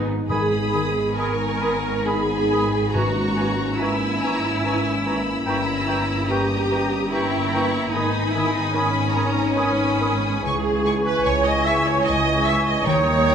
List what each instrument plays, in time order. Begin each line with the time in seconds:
Already playing: cello section G#2, harp G#2 D#3 G#3 B3 D#4
0.28 double bass section G#1, timpani G#2, cello section G#2, harp G#2, french horn section D#3 B3, bassoon D#3, viola section G#4, clarinet G#5, violin section B5 D#6, oboe B5, flute section D#6
0.73 harp D#3, bassoon D#3, clarinet G#5, oboe B5, flute section D#6
1.15 bassoon D#3, harp G#3, viola section A#4, violin section G#5 C#6, clarinet G#5, oboe B5, flute section D#6
1.61 bassoon D#3, harp B3, clarinet G#5, oboe B5, flute section D#6
2.03 bassoon D#3, harp D#4, viola section G#4, violin section G#5 B5, clarinet G#5, oboe B5
2.08 flute section D#6
2.50 bassoon D#3, harp G#3, clarinet G#5, oboe B5, flute section D#6
2.92 harp G#2, timpani G#2, bassoon E3, french horn section A#3 C#4, viola section F#4, clarinet G#5, violin section A#5 C#6, oboe A#5, flute section C#6
3.36 bassoon E3, harp G#3, clarinet G#5, oboe A#5
3.41 flute section C#6
3.78 bassoon E3, harp A#3, viola section E4, violin section G#5 B5 E6, clarinet G#5, oboe A#5
3.83 flute section C#6
4.18 violin section A#5
4.23 bassoon E3, harp C#4, clarinet G#5, oboe A#5, flute section C#6
4.64 bassoon E3, harp E4, clarinet G#5, violin section G#5, oboe A#5, flute section C#6
5.04 bassoon E3, harp A#3, clarinet G#5, oboe A#5, violin section B5, flute section C#6
5.44 double bass section G1, harp G2, cello section G2, bassoon E3, viola section E4, clarinet G5, violin section A#5 E6, oboe A#5
5.48 flute section C#6
5.88 bassoon E3, harp G3, clarinet G5, oboe A#5, flute section C#6
6.27 bassoon E3, harp A#3, viola section G4, clarinet G5, violin section A#5, oboe A#5, flute section C#6
6.31 violin section D#6
6.70 bassoon E3, harp C#4, clarinet G5, oboe A#5, flute section C#6
7.10 bassoon E3, viola section E4, harp G4, violin section G5 A#5 C#6, clarinet G5, oboe A#5, flute section C#6
7.52 bassoon E3, harp A#3, clarinet G5, oboe A#5, violin section C#6, flute section C#6
7.92 double bass section G#1, harp G#2, cello section G#2, bassoon D#3, french horn section B3 D#4, viola section D#4, violin section G#5 B5 D#6, clarinet G#5, oboe B5, flute section D#6
8.34 harp D#3, bassoon D#3, viola section E4, clarinet G#5, oboe B5, flute section D#6
8.54 viola section D#4
8.73 bassoon D#3, harp G#3, viola section C#4, clarinet G#5, oboe B5, violin section B5, flute section D#6
9.13 bassoon D#3, harp D#4, clarinet G#5, violin section A#5, oboe B5, flute section D#6
9.55 bassoon D#3, harp B4, violin section G#5 B5 D#6, clarinet G#5, oboe B5, flute section D#6
9.97 bassoon D#3, harp G#3, clarinet G#5, oboe B5
10.02 flute section D#6
10.42 double bass section C#2, cello section C#2, harp C#3, bassoon E3, french horn section E4, viola section G#4, oboe G#5, clarinet G#5, violin section G#5 C#6, flute section C#6
10.47 french horn section G#3
10.86 harp C#4, violin section G#5 C#6
11.06 viola section B4
11.24 double bass section C#2, cello section C#2, harp G#3, viola section C#5, violin section G#5 C#6
11.45 viola section D#5
11.66 harp E4, viola section E5, violin section G#5 C#6
11.87 viola section C#5
12.05 double bass section C#2, cello section C#2, harp C#5, viola section D#5, violin section G#5 C#6
12.45 harp G#3, viola section E5, violin section G#5 C#6
12.65 viola section D#5
12.85 double bass section D#2, cello section D#2, bassoon D#3, harp D#3, timpani D#3, french horn section G3 D#4, viola section C#5, clarinet G5, violin section G5 C#6, oboe A#5, flute section D#6
12.89 violin section A#5
13.26 harp G3, violin section G5 A#5 C#6